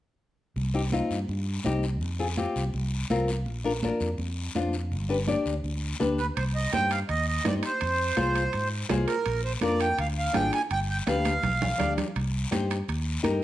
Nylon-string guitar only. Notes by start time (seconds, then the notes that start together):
0.74 C4 D#4 G4
0.92 C4 D#4 F4
1.65 C4 D#4 G4
2.19 C4 F4 G#4
2.37 C4 F4 G4
3.10 C4 F4 A#4
3.64 D4 F4 A#4
3.83 D4 F4 A#4
4.55 D4 F4 C5
5.09 D4 G4 B4
5.27 D4 G4 D5
6.00 D4 G4 B4
6.73 D#4 G4 C5
7.44 D#4 G4 C5
8.17 F4 G#4 C5
8.89 F4 G#4 C5
9.61 D4 F4 A#4
10.33 D4 F4 G#4
11.07 D4 G4 B4
11.78 D4 G4 D5
12.51 D#4 G4 C5
13.23 D#4 G4 A#4